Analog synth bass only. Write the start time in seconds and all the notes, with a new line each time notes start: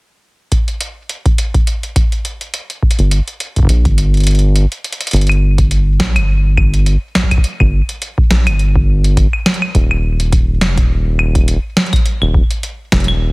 2.99 G1
3.69 A#1
3.85 G1
5.13 G1
6.00 A#1
6.16 G1
7.60 G1
8.31 A#1
8.47 G1
9.75 D#1
10.61 F1
10.78 D#1
12.22 D#1
12.92 F1
13.08 D#1